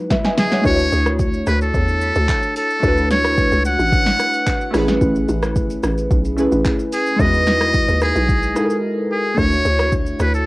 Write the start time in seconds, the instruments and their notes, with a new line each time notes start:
Already playing: synth keys G#3 D#4 E4 F#4 B4
0.10 synth keys B4 E5, kick, snare, high conga, low conga, shaker
0.25 synth keys D#5 G#5, snare, shaker
0.38 muted trumpet G#4, snare, high conga, low conga, shaker
0.52 synth keys C#5 F#5, snare, shaker
0.62 log drum bass D2, synth keys A3 D4 E4, kick, shaker
0.66 synth keys F#4 B4, muted trumpet C#5
0.76 synth keys C#5, shaker
0.92 log drum bass D2, shaker
1.06 cross-stick, shaker
1.19 kick, shaker
1.34 shaker
1.47 log drum bass D2, muted trumpet B4, cross-stick, shaker
1.61 muted trumpet A4, shaker
1.74 log drum bass E2, kick, shaker
1.88 shaker
2.01 shaker
2.15 log drum bass D2, shaker
2.29 kick, clap, shaker
2.43 shaker
2.56 muted trumpet A4, open hi-hat, shaker
2.70 shaker
2.80 log drum bass D2, synth keys A3 D4, kick, shaker
2.84 synth keys E4 F#4 B4
2.97 shaker
3.11 muted trumpet C#5, snare, shaker
3.25 cross-stick, shaker
3.38 kick, shaker
3.52 log drum bass C#2, shaker
3.65 muted trumpet F#5, shaker
3.79 log drum bass A1, shaker
3.92 kick, shaker
4.06 snare, shaker
4.19 cross-stick, shaker
4.33 shaker
4.47 kick, clap, shaker
4.61 shaker
4.71 log drum bass A1, synth keys A3 C#4 E4, cross-stick, open hi-hat, shaker
4.77 synth keys G#4 B4
4.88 snare, shaker
5.01 log drum bass A1, kick, shaker
5.16 shaker
5.29 log drum bass A1, shaker
5.43 cross-stick, shaker
5.56 kick, shaker
5.70 shaker
5.83 log drum bass A1, cross-stick, shaker
5.98 shaker
6.11 log drum bass B1, kick, shaker
6.25 shaker
6.37 synth keys A3 C#4 E4 G#4 B4, shaker
6.52 log drum bass A1, shaker
6.65 kick, clap, shaker
6.79 shaker
6.92 muted trumpet G#4, open hi-hat, shaker
7.06 shaker
7.16 log drum bass E2, synth keys G#3 D#4 E4, kick, shaker
7.21 synth keys F#4 B4, muted trumpet D#5
7.34 shaker
7.47 snare, shaker
7.61 cross-stick, shaker
7.74 kick, shaker
7.88 log drum bass D#2, shaker
8.01 muted trumpet G#4, cross-stick, shaker
8.16 log drum bass B1, shaker
8.29 kick, shaker
8.43 shaker
8.55 synth keys G#3 D#4 E4 F#4 A4, cross-stick, shaker
8.65 synth keys A#4
8.70 shaker
9.11 muted trumpet G#4
9.35 log drum bass D2, synth keys A3 D4 E4, kick, shaker
9.39 synth keys F#4 C#5, muted trumpet C#5
9.52 shaker
9.65 log drum bass D2, shaker
9.79 cross-stick, shaker
9.92 kick, shaker
10.06 shaker
10.20 log drum bass D2, muted trumpet B4, cross-stick, shaker
10.34 muted trumpet A4, shaker